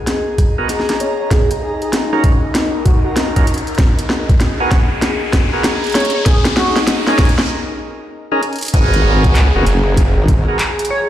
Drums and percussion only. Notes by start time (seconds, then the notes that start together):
0.07 snare, closed hi-hat
0.38 kick, cross-stick, closed hi-hat
0.69 snare, closed hi-hat
0.80 snare
0.89 snare, closed hi-hat
1.00 closed hi-hat
1.31 kick, snare, closed hi-hat
1.51 cross-stick, closed hi-hat
1.82 closed hi-hat
1.93 snare, closed hi-hat
2.13 cross-stick
2.24 kick, closed hi-hat
2.55 snare, closed hi-hat
2.86 kick, closed hi-hat
3.16 snare, closed hi-hat
3.36 kick, closed hi-hat
3.47 closed hi-hat
3.54 closed hi-hat
3.58 closed hi-hat
3.67 closed hi-hat
3.75 snare, closed hi-hat
3.79 kick, closed hi-hat
3.99 closed hi-hat
4.10 snare
4.29 kick, closed hi-hat
4.40 snare, closed hi-hat
4.71 kick, snare, closed hi-hat
5.02 snare, closed hi-hat
5.33 kick, snare, closed hi-hat
5.64 snare, closed hi-hat
5.84 closed hi-hat
5.87 closed hi-hat
5.90 closed hi-hat
5.92 snare, closed hi-hat
5.95 closed hi-hat
6.00 closed hi-hat
6.05 closed hi-hat
6.10 closed hi-hat
6.26 kick, snare, closed hi-hat
6.45 snare, closed hi-hat
6.57 snare
6.76 snare, closed hi-hat
6.87 snare, closed hi-hat
7.07 snare
7.18 kick, snare, closed hi-hat
7.25 closed hi-hat
7.29 closed hi-hat
7.39 snare
8.43 closed hi-hat
8.53 closed hi-hat
8.56 closed hi-hat
8.58 closed hi-hat
8.61 closed hi-hat
8.63 closed hi-hat
8.65 closed hi-hat
8.68 closed hi-hat
8.74 kick, closed hi-hat
8.94 closed hi-hat
9.24 kick, closed hi-hat
9.35 clap, closed hi-hat
9.67 clap, closed hi-hat
9.97 kick, closed hi-hat
10.28 kick, cross-stick, closed hi-hat
10.59 clap, closed hi-hat
10.79 closed hi-hat
10.85 closed hi-hat